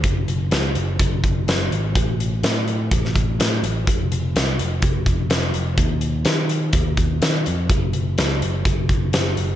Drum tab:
HH |x-x-x-x-x-x-x-x-|x-x-x-x-x-x-x-x-|x-x-x-x-x-x-x-x-|x-x-x-x-x-x-x-x-|
SD |----o-------o---|----o----o--o---|----o-------o---|----o-------o---|
BD |o-------o-o-----|o-------o-o-----|o-------o-o-----|o-------o-o-----|

HH |x-x-x-x-x-x-x-x-|
SD |----o-------o---|
BD |o-------o-o-----|